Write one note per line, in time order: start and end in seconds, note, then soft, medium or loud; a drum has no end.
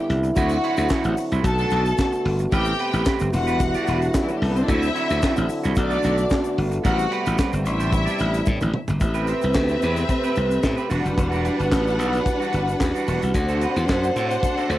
0.00 1.42 D3 medium
0.00 0.36 G3 medium
0.00 0.33 B3 medium
0.00 1.43 E4 loud
0.10 0.29 C2 medium
0.10 snare soft
0.10 closed hi-hat medium
0.23 muted clean electric guitar stroke soft
0.23 closed hi-hat soft
0.23 shaker medium
0.36 0.56 D2 medium
0.36 1.43 F#3 medium
0.36 0.58 C4 medium
0.36 1.43 C4 medium
0.36 0.50 E4 medium
0.36 1.16 F#4 loud
0.36 0.50 F#4 medium
0.36 1.16 F#5 loud
0.36 kick loud
0.36 closed hi-hat medium
0.36 shaker medium
0.49 muted clean electric guitar stroke soft
0.49 closed hi-hat soft
0.49 shaker medium
0.63 0.78 C4 medium
0.63 0.78 E4 medium
0.63 0.77 F#4 medium
0.63 closed hi-hat medium
0.77 0.87 D2 loud
0.77 0.89 C4 medium
0.77 0.90 E4 medium
0.77 0.90 F#4 medium
0.77 closed hi-hat soft
0.77 shaker medium
0.89 1.12 C4 medium
0.89 1.05 E4 medium
0.89 1.04 F#4 loud
0.89 kick loud
0.89 snare loud
0.89 clap loud
0.89 shaker medium
1.04 1.14 A1 loud
1.04 muted clean electric guitar stroke soft
1.04 closed hi-hat soft
1.04 shaker medium
1.17 muted clean electric guitar stroke soft
1.17 open hi-hat medium
1.17 shaker medium
1.31 1.41 C2 medium
1.31 1.45 C4 medium
1.31 1.45 E4 medium
1.31 1.45 F#4 medium
1.31 closed hi-hat medium
1.31 shaker medium
1.43 1.64 B1 medium
1.43 2.51 D3 medium
1.43 3.31 A3 medium
1.43 4.65 B3 medium
1.43 2.51 F#4 medium
1.43 2.24 A4 medium
1.43 2.24 A5 loud
1.43 muted clean electric guitar stroke soft
1.43 kick loud
1.43 closed hi-hat medium
1.43 shaker medium
1.58 1.71 A3 medium
1.58 1.71 D4 medium
1.58 1.73 A4 medium
1.58 closed hi-hat soft
1.58 shaker medium
1.70 1.91 B1 medium
1.70 1.89 A3 medium
1.70 1.85 D4 medium
1.70 1.84 F#4 medium
1.70 closed hi-hat medium
1.70 shaker medium
1.85 muted clean electric guitar stroke soft
1.85 closed hi-hat soft
1.85 shaker medium
1.98 muted clean electric guitar stroke soft
1.98 kick loud
1.98 snare medium
1.98 clap medium
1.98 shaker medium
2.12 muted clean electric guitar stroke soft
2.12 closed hi-hat soft
2.12 shaker medium
2.25 2.45 G1 loud
2.25 open hi-hat medium
2.39 muted clean electric guitar stroke medium
2.39 closed hi-hat soft
2.39 shaker soft
2.51 2.72 A1 loud
2.51 3.32 C3 medium
2.51 2.74 C4 medium
2.51 3.33 G4 medium
2.51 3.05 G4 loud
2.51 2.66 G4 loud
2.51 2.65 B4 medium
2.51 3.05 G5 loud
2.51 kick loud
2.51 closed hi-hat medium
2.51 shaker medium
2.65 muted clean electric guitar stroke soft
2.65 shaker medium
2.78 2.92 C4 medium
2.78 2.92 G4 medium
2.78 2.91 B4 medium
2.78 closed hi-hat medium
2.92 3.03 A1 loud
2.92 3.04 C4 medium
2.92 3.05 G4 medium
2.92 3.05 B4 medium
2.92 closed hi-hat soft
2.92 shaker medium
3.05 3.28 C4 medium
3.05 3.20 G4 medium
3.05 3.19 B4 loud
3.05 kick loud
3.05 snare loud
3.05 clap loud
3.05 shaker medium
3.19 3.30 G1 medium
3.19 muted clean electric guitar stroke medium
3.19 closed hi-hat soft
3.19 shaker medium
3.32 3.73 E1 loud
3.32 6.82 D3 medium
3.32 4.67 G3 medium
3.32 4.67 E4 medium
3.32 4.15 F#4 medium
3.32 4.15 F#5 loud
3.32 muted clean electric guitar stroke soft
3.32 open hi-hat medium
3.32 shaker medium
3.47 3.59 D4 medium
3.47 3.59 G4 medium
3.47 3.60 B4 medium
3.47 closed hi-hat medium
3.47 shaker medium
3.60 kick loud
3.60 closed hi-hat medium
3.60 shaker medium
3.74 3.87 D4 medium
3.74 3.87 G4 medium
3.74 3.89 D5 medium
3.74 closed hi-hat soft
3.74 shaker soft
3.87 4.08 E1 loud
3.87 4.05 D4 medium
3.87 4.01 G4 medium
3.87 4.00 B4 medium
3.87 closed hi-hat medium
3.87 shaker medium
4.02 muted clean electric guitar stroke soft
4.02 closed hi-hat soft
4.02 shaker medium
4.14 muted clean electric guitar stroke soft
4.14 kick loud
4.14 snare loud
4.14 clap medium
4.14 shaker medium
4.22 4.29 E3 medium
4.22 4.29 E4 medium
4.28 4.36 F#3 medium
4.28 4.36 F#4 medium
4.28 muted clean electric guitar stroke medium
4.28 closed hi-hat soft
4.28 shaker medium
4.36 4.42 G3 medium
4.36 4.42 G4 medium
4.42 4.62 C2 loud
4.42 4.49 A3 medium
4.42 4.49 A4 medium
4.42 snare soft
4.42 open hi-hat medium
4.49 4.56 B3 medium
4.49 4.56 B4 medium
4.56 4.62 C4 medium
4.56 4.62 C5 medium
4.56 muted clean electric guitar stroke soft
4.56 closed hi-hat soft
4.56 shaker soft
4.63 4.69 D4 medium
4.63 4.69 D5 medium
4.68 4.88 D2 loud
4.68 5.76 F#3 medium
4.68 4.90 C4 medium
4.68 5.76 C4 medium
4.68 5.48 E4 loud
4.68 4.82 E4 medium
4.68 5.76 E4 medium
4.68 4.81 F#4 loud
4.68 5.48 E5 loud
4.68 kick loud
4.68 closed hi-hat medium
4.68 shaker medium
4.82 muted clean electric guitar stroke soft
4.82 closed hi-hat soft
4.82 shaker medium
4.95 5.09 C4 medium
4.95 5.09 E4 medium
4.95 5.08 F#4 medium
4.95 closed hi-hat medium
5.09 5.20 D2 medium
5.09 5.21 C4 soft
5.09 5.21 E4 medium
5.09 5.22 F#4 medium
5.09 closed hi-hat medium
5.09 shaker medium
5.22 5.44 C4 medium
5.22 5.36 E4 medium
5.22 5.35 F#4 medium
5.22 kick loud
5.22 snare loud
5.22 clap loud
5.22 shaker medium
5.36 5.47 A1 medium
5.36 muted clean electric guitar stroke soft
5.36 closed hi-hat soft
5.36 shaker medium
5.49 muted clean electric guitar stroke soft
5.49 open hi-hat medium
5.49 shaker medium
5.64 5.74 C2 medium
5.64 5.76 C4 medium
5.64 5.77 E4 medium
5.64 5.76 F#4 medium
5.64 closed hi-hat soft
5.64 shaker medium
5.75 5.97 B1 loud
5.75 7.64 A3 medium
5.75 8.84 B3 medium
5.75 6.56 D4 medium
5.75 6.84 F#4 medium
5.75 6.57 D5 loud
5.75 muted clean electric guitar stroke soft
5.75 kick loud
5.75 closed hi-hat medium
5.75 shaker medium
5.90 6.01 A3 medium
5.90 6.02 D4 medium
5.90 6.03 A4 medium
5.90 closed hi-hat soft
5.90 shaker medium
6.02 6.24 B1 medium
6.02 6.20 A3 medium
6.02 6.17 D4 medium
6.02 6.16 F#4 medium
6.02 closed hi-hat medium
6.02 shaker medium
6.17 muted clean electric guitar stroke soft
6.17 closed hi-hat medium
6.17 shaker medium
6.30 muted clean electric guitar stroke soft
6.30 kick loud
6.30 snare loud
6.30 clap medium
6.30 shaker medium
6.44 muted clean electric guitar stroke soft
6.44 closed hi-hat soft
6.44 shaker medium
6.58 6.78 G1 loud
6.58 open hi-hat medium
6.72 muted clean electric guitar stroke medium
6.72 closed hi-hat soft
6.72 shaker soft
6.84 7.05 A1 loud
6.84 8.84 C3 medium
6.84 8.84 G3 medium
6.84 7.06 C4 medium
6.84 7.37 F#4 medium
6.84 6.98 G4 loud
6.84 6.97 B4 medium
6.84 7.38 F#5 loud
6.84 kick loud
6.84 closed hi-hat medium
6.84 shaker medium
6.98 muted clean electric guitar stroke soft
6.98 shaker medium
7.11 7.26 C4 medium
7.11 7.25 G4 medium
7.11 7.25 B4 medium
7.11 closed hi-hat medium
7.26 7.36 A1 medium
7.26 7.36 C4 soft
7.26 7.37 G4 medium
7.26 7.38 B4 medium
7.26 closed hi-hat soft
7.26 shaker medium
7.37 7.60 C4 medium
7.37 7.52 G4 loud
7.37 7.51 B4 loud
7.37 kick loud
7.37 snare loud
7.37 clap loud
7.37 shaker medium
7.52 7.66 G1 medium
7.52 muted clean electric guitar stroke medium
7.52 shaker medium
7.65 8.06 A1 loud
7.65 8.84 D4 medium
7.65 8.72 E4 medium
7.65 8.72 E5 loud
7.65 muted clean electric guitar stroke soft
7.65 closed hi-hat medium
7.65 shaker medium
7.80 7.90 D4 medium
7.80 7.91 G4 medium
7.80 7.92 C5 medium
7.80 closed hi-hat soft
7.80 shaker medium
7.92 muted clean electric guitar stroke soft
7.92 kick loud
7.92 closed hi-hat medium
7.92 shaker medium
8.06 8.19 D4 medium
8.06 8.19 G4 medium
8.06 8.20 D5 medium
8.06 closed hi-hat soft
8.06 shaker medium
8.19 8.40 A1 loud
8.19 muted clean electric guitar stroke soft
8.19 closed hi-hat medium
8.19 shaker medium
8.34 muted clean electric guitar stroke soft
8.34 closed hi-hat medium
8.34 shaker medium
8.46 8.58 A2 medium
8.46 muted clean electric guitar stroke soft
8.46 kick loud
8.46 high tom medium
8.46 shaker medium
8.61 8.71 A1 loud
8.61 muted clean electric guitar stroke soft
8.61 mid tom medium
8.61 shaker medium
8.74 mid tom medium
8.88 8.99 G1 loud
8.88 muted clean electric guitar stroke soft
8.88 floor tom loud
8.88 shaker soft
9.00 9.32 A1 loud
9.00 10.89 C3 medium
9.00 10.89 A3 medium
9.00 10.87 C4 medium
9.00 10.90 G4 medium
9.00 10.87 B4 medium
9.00 10.89 B4 medium
9.00 10.87 E5 loud
9.00 muted clean electric guitar stroke soft
9.00 kick loud
9.00 closed hi-hat medium
9.00 shaker medium
9.14 9.26 C4 medium
9.14 9.27 G4 medium
9.14 9.29 B4 medium
9.14 closed hi-hat soft
9.14 shaker medium
9.27 9.45 C4 medium
9.27 9.41 G4 medium
9.27 9.42 C5 medium
9.27 closed hi-hat medium
9.27 shaker medium
9.41 9.53 C2 loud
9.41 muted clean electric guitar stroke soft
9.41 closed hi-hat soft
9.41 shaker medium
9.54 9.75 D2 medium
9.54 kick loud
9.54 snare loud
9.54 clap medium
9.54 shaker medium
9.68 muted clean electric guitar stroke soft
9.68 closed hi-hat soft
9.68 shaker medium
9.82 10.03 E2 medium
9.82 10.04 C4 medium
9.82 9.97 G4 medium
9.82 9.96 B4 medium
9.82 closed hi-hat medium
9.82 shaker medium
9.96 muted clean electric guitar stroke medium
9.96 closed hi-hat soft
9.96 shaker medium
10.09 muted clean electric guitar stroke soft
10.09 kick loud
10.09 closed hi-hat medium
10.09 shaker medium
10.23 10.35 C4 medium
10.23 10.36 G4 medium
10.23 10.36 B4 medium
10.23 shaker soft
10.36 10.57 C2 medium
10.36 muted clean electric guitar stroke soft
10.36 closed hi-hat medium
10.36 shaker soft
10.51 muted clean electric guitar stroke soft
10.51 closed hi-hat soft
10.51 shaker medium
10.63 10.74 A2 medium
10.63 muted clean electric guitar stroke soft
10.63 kick loud
10.63 snare loud
10.63 clap medium
10.63 shaker medium
10.76 10.89 C4 soft
10.76 10.90 G4 soft
10.76 10.93 B4 medium
10.76 shaker soft
10.89 11.01 E1 medium
10.89 13.32 E3 medium
10.89 11.12 G3 medium
10.89 13.33 G3 medium
10.89 11.04 D4 medium
10.89 14.78 D4 medium
10.89 13.31 D4 medium
10.89 11.03 F#4 medium
10.89 14.78 F#4 medium
10.89 13.31 B4 medium
10.89 13.31 F#5 medium
10.89 open hi-hat medium
10.89 shaker medium
11.04 11.15 F#1 loud
11.04 muted clean electric guitar stroke soft
11.04 closed hi-hat soft
11.04 shaker soft
11.17 11.48 E1 medium
11.17 muted clean electric guitar stroke soft
11.17 kick loud
11.17 closed hi-hat medium
11.17 shaker medium
11.31 11.43 G3 medium
11.31 11.44 D4 medium
11.31 11.45 F#4 medium
11.31 closed hi-hat soft
11.31 shaker soft
11.44 11.62 G3 medium
11.44 11.59 D4 medium
11.44 11.59 G4 medium
11.44 closed hi-hat medium
11.44 shaker medium
11.59 11.69 G1 medium
11.59 muted clean electric guitar stroke medium
11.59 closed hi-hat soft
11.59 shaker medium
11.72 11.99 A1 loud
11.72 kick loud
11.72 snare loud
11.72 clap medium
11.72 shaker medium
11.86 muted clean electric guitar stroke medium
11.86 shaker medium
11.98 12.19 B1 medium
11.98 12.20 G3 medium
11.98 12.13 D4 medium
11.98 12.12 F#4 medium
11.98 closed hi-hat medium
11.98 shaker medium
12.13 muted clean electric guitar stroke soft
12.13 closed hi-hat soft
12.13 shaker medium
12.26 muted clean electric guitar stroke soft
12.26 kick loud
12.26 closed hi-hat medium
12.26 shaker medium
12.40 12.52 G3 medium
12.40 12.53 D4 medium
12.40 12.54 F#4 medium
12.40 shaker soft
12.52 12.74 G1 medium
12.52 muted clean electric guitar stroke soft
12.52 closed hi-hat medium
12.52 shaker soft
12.67 muted clean electric guitar stroke soft
12.67 closed hi-hat soft
12.67 shaker medium
12.80 12.91 E2 medium
12.80 muted clean electric guitar stroke soft
12.80 kick loud
12.80 snare medium
12.80 clap medium
12.80 shaker medium
12.94 13.07 G3 soft
12.94 13.08 D4 medium
12.94 13.09 F#4 medium
12.94 closed hi-hat soft
12.94 shaker medium
13.08 13.18 E1 medium
13.08 13.30 G3 medium
13.08 13.22 D4 medium
13.08 13.21 F#4 medium
13.08 open hi-hat medium
13.08 shaker medium
13.22 13.32 C2 medium
13.22 muted clean electric guitar stroke soft
13.22 closed hi-hat soft
13.22 shaker soft
13.34 13.65 D2 medium
13.34 14.78 C3 medium
13.34 14.78 A3 medium
13.34 14.78 D4 medium
13.34 14.78 C5 loud
13.34 14.78 F#5 loud
13.34 muted clean electric guitar stroke soft
13.34 kick loud
13.34 closed hi-hat medium
13.34 shaker medium
13.49 13.61 C4 medium
13.49 13.62 F#4 medium
13.49 13.63 A4 medium
13.49 shaker medium
13.61 13.79 C4 medium
13.61 13.76 F#4 medium
13.61 13.76 B4 medium
13.61 closed hi-hat medium
13.61 shaker medium
13.76 13.86 E2 medium
13.76 muted clean electric guitar stroke soft
13.76 closed hi-hat soft
13.76 shaker medium
13.88 14.09 F#2 medium
13.88 kick loud
13.88 snare loud
13.88 clap loud
13.88 shaker medium
14.04 muted clean electric guitar stroke soft
14.04 shaker medium
14.16 14.36 A2 medium
14.16 14.38 C4 medium
14.16 14.31 F#4 medium
14.16 14.30 A4 medium
14.16 closed hi-hat medium
14.16 shaker medium
14.30 muted clean electric guitar stroke medium
14.30 closed hi-hat medium
14.30 shaker medium
14.43 muted clean electric guitar stroke soft
14.43 kick loud
14.43 closed hi-hat medium
14.43 shaker medium
14.57 14.69 C4 medium
14.57 14.70 F#4 medium
14.57 14.70 A4 medium
14.57 closed hi-hat soft
14.57 shaker soft
14.70 14.78 D2 medium
14.70 14.78 C4 medium
14.70 14.78 F#4 medium
14.70 14.78 A4 medium
14.70 closed hi-hat medium
14.70 shaker soft